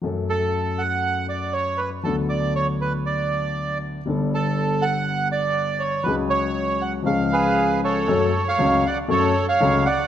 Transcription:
X:1
M:4/4
L:1/16
Q:1/4=119
K:F#m
V:1 name="Bandoneon"
z2 A4 f4 d2 c2 B2 | A2 d2 c2 B2 d6 z2 | z2 A4 f4 d4 c2 | B2 c4 f2 ^e2 [GB]4 [Ac]2- |
[Ac]3 [c^e]3 [df]2 [Ac]3 [ce]3 [df]2 |]
V:2 name="Grand piano" clef=bass
[F,,F,A,CA]16 | [D,,D,F,B,DA]16 | [=G,,,=G,,=G,B,DA]16 | [C,,C,F,G,CG]8 [C,,C,^E,G,CG]8 |
[F,,F,A,CA]2 z2 [C,,C,F,A,CA]2 z2 [F,,F,A,CA]2 z2 [C,,C,F,A,CA]2 z2 |]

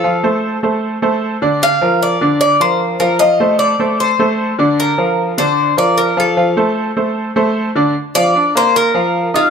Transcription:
X:1
M:4/4
L:1/8
Q:1/4=152
K:Bb
V:1 name="Cuban tres"
A3 z4 z | f2 d2 d c2 B | e2 d2 c3 z | B3 c2 d B A- |
A6 z2 | z d2 c B3 F |]
V:2 name="Grand piano"
[F,Ff] [A,Ac]2 [A,Ac]2 [A,Ac]2 [D,Dd]- | [D,Dd] [F,FB]2 [D,Dd]2 [F,FB]2 [F,Ff] | [F,Ff] [A,Ac]2 [A,Ac]2 [A,Ac]2 [D,Dd]- | [D,Dd] [F,FB]2 [D,Dd]2 [F,FB]2 [F,Ff] |
[F,Ff] [A,Ac]2 [A,Ac]2 [A,Ac]2 [D,Dd] | z [F,Ff] [Ddd'] [B,Bb]2 [F,Ff]2 [Eee'] |]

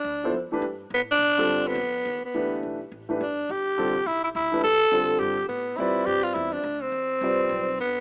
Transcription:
X:1
M:4/4
L:1/8
Q:"Swing" 1/4=210
K:Ephr
V:1 name="Tenor saxophone"
D2 z4 B, D- | D3 B,4 B,- | B,2 z4 D2 | G4 E E E2 |
A4 G2 B,2 | E2 G F E D2 C- | C6 B,2 |]
V:2 name="Grand piano"
z [F,B,EAc] z [E,A,DGB] z4 | z [D,G,CFA]3 z4 | [E,A,DGB]3 z2 [E,A,DGB] z2 | z2 [D,G,CFA] z4 [E,A,DGB] |
z2 [D,G,CFA]3 z3 | [G,CFBd]4- [G,CFBd] z3 | z2 [G,CFBd]3 z3 |]
V:3 name="Upright bass" clef=bass
D,,2 F,, z G,,2 A,,2 | B,,2 G,,2 F,,2 _E,, z | D,,2 B,,,2 A,,,2 G,,,2 | G,,,2 A,,,2 B,,,2 D,,2 |
E,,2 F,,2 G,,2 A,,2 | B,,2 G,,2 E,,2 D,,2 | E,,2 C,,2 B,,,2 G,,,2 |]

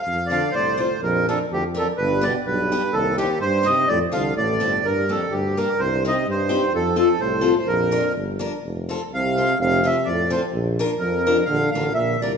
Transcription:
X:1
M:2/4
L:1/16
Q:"Swing" 1/4=126
K:F
V:1 name="Accordion"
f2 [df]2 [cd]2 c2 | [K:Bb] B2 A2 G2 A2 | =B2 d2 B4 | A2 G2 c2 e2 |
d2 f2 d4 | B2 A2 G2 B2 | c2 e2 c4 | A2 A2 c3 c |
B4 z4 | [K:F] z4 f4 | f2 e2 d2 c2 | z4 B4 |
f2 f2 e2 d2 |]
V:2 name="Steel-string acoustic guitar"
z2 [CFA]2 z2 [CFA]2 | [K:Bb] z2 [DFB]2 z2 [DFB]2 | z2 [=B,DG]2 z2 [B,DG]2 | z2 [CEG]2 z2 [CEG]2 |
z2 [CFA]2 z2 [CFA]2 | z2 [B,DG]2 z2 [B,DG]2 | z2 [CEG]2 z2 [CEG]2 | z2 [CFA]2 z2 [CFA]2 |
z2 [DFB]2 z2 [DFB]2 | [K:F] z2 [CFA]2 z2 [CFA]2 | z2 [CFA]2 z2 [CFA]2 | z2 [DFB]2 z2 [DFB]2 |
z2 [DFB]2 z2 [DFB]2 |]
V:3 name="Euphonium" clef=bass
z2 D,2 A,,2 A,,2 | [K:Bb] F,,2 F,,2 D,,2 F,,2 | G,,2 =B,,2 G,,4 | E,,2 E,,2 G,,2 C,2 |
A,,2 D,2 A,,4 | G,,2 F,,2 D,,2 G,,2 | G,,2 C,2 G,,4 | F,,2 F,,2 A,,3 A,, |
F,,4 z4 | [K:F] z4 C,4 | C,2 C,2 A,,2 A,,2 | z4 F,,4 |
D,2 D,2 B,,2 B,,2 |]
V:4 name="Tuba" clef=bass
F,,4 C,,4 | [K:Bb] B,,,4 F,,4 | G,,,4 =B,,,4 | C,,4 G,,4 |
F,,2 C,,2 A,,,2 G,,,2 | G,,4 G,,4 | C,,4 G,,4 | F,,4 C,,4 |
B,,,4 G,,,4 | [K:F] F,,,4 C,,4 | F,,,4 F,,4 | B,,,4 F,,4 |
B,,,2 A,,,2 B,,,2 C,,2 |]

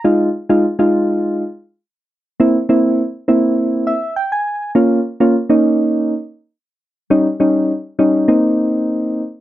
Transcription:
X:1
M:4/4
L:1/16
Q:1/4=102
K:Fm
V:1 name="Synth keys"
[A,EF]2 z [A,EF] z [A,EF]4 z6 z | [B,C=E] z [B,CE]2 z2 [B,CE]4 =e2 g a3 | [B,DF]2 z [B,DF] z [B,DE]4 z6 z | [G,DE] z [G,DE]2 z2 [G,DE]2 [B,CE]6 z2 |]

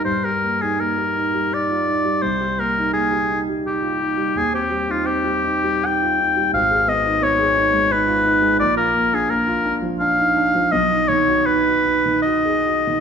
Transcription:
X:1
M:3/4
L:1/16
Q:1/4=84
K:Cm
V:1 name="Oboe"
c B2 A B4 d4 | c2 B2 A3 z G4 | A G2 F G4 g4 | [K:Cblyd] f2 e2 d4 c4 |
=d B2 A B3 z f4 | ^d2 _d2 =B4 ^d4 |]
V:2 name="Grand piano"
G,, G B, E B, G E G, E F E G, | C,, G B, E B, G E G, E F E G, | E,, C G, E C G, E G, E F E G, | [K:Cblyd] A,,, A C E C A E A, E F E A, |
B,,, F B, =D B, F D F, D E D F, | =B,,, ^D ^D, ^F D F D D, F A F D, |]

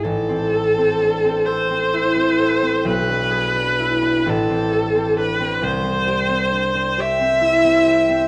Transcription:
X:1
M:6/8
L:1/16
Q:3/8=44
K:Am
V:1 name="Viola"
A6 c6 | B6 A4 B2 | c6 e6 |]
V:2 name="Harp"
[A,,,E] C A C D C A C E C A C | B,,, D ^G D E D A,,, C A C D C | C,, C G C D C G C E C G C |]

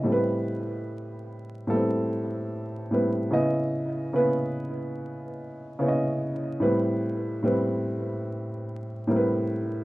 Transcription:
X:1
M:4/4
L:1/16
Q:"Swing 16ths" 1/4=73
K:Alyd
V:1 name="Upright piano"
[A,,=G,=CAB]6 z2 [A,,G,B,CA]4- [A,,G,B,CA] z [A,,G,CB]2 | [C,B,Ed]4 [C,B,EB]6 z2 [C,B,Ecd]4 | [A,,=G,=CB]4 [A,,G,CB]6 z2 [A,,G,C^AB]4 |]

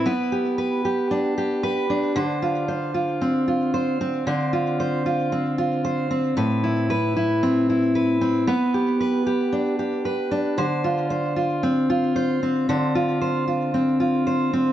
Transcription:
X:1
M:4/4
L:1/8
Q:"Swing 16ths" 1/4=114
K:Ddor
V:1 name="Steel-string acoustic guitar"
[B,B] G B G D G B D | [D,c] F c F C F c C | [D,c] F c F C F c C | [A,,B] E B E C E B C |
[B,B] G B G D G B D | [D,c] F c F C F c C | [D,c] F c F C F c C |]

